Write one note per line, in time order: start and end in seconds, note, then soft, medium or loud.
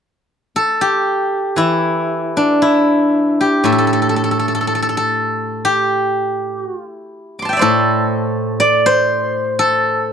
0.56 2.75 A4 medium
0.81 3.17 G4 medium
1.56 4.66 E3 soft
1.56 2.62 E4 medium
2.37 5.17 D4 medium
2.62 5.23 E4 medium
3.41 5.64 G4 medium
3.64 6.63 A2 soft
3.64 3.72 A4 medium
3.72 3.78 A4 soft
3.78 3.87 A4 soft
3.87 3.92 A4 soft
3.93 4.01 A4 soft
4.02 4.09 A4 soft
4.09 4.16 A4 soft
4.16 4.23 A4 soft
4.24 4.31 A4 soft
4.31 4.39 A4 soft
4.39 4.48 A4 soft
4.48 4.54 A4 soft
4.55 4.60 A4 soft
4.61 4.67 A4 soft
4.67 4.74 A4 soft
4.75 4.82 A4 soft
4.82 4.88 A4 soft
4.89 4.97 A4 soft
4.97 7.17 A4 soft
5.65 6.61 G4 medium
6.61 6.77 F#4 medium
6.77 6.93 F4 medium
6.93 8.00 E4 medium
7.39 8.73 C6 soft
7.39 8.61 D6 soft
7.45 9.04 G5 soft
7.45 8.90 A5 soft
7.53 8.59 D5 soft
7.53 9.25 E5 soft
7.59 10.13 A2 soft
7.59 9.59 A4 medium
7.59 8.86 C5 soft
8.60 10.13 D5 medium
8.86 10.13 C5 medium
9.59 10.13 A4 medium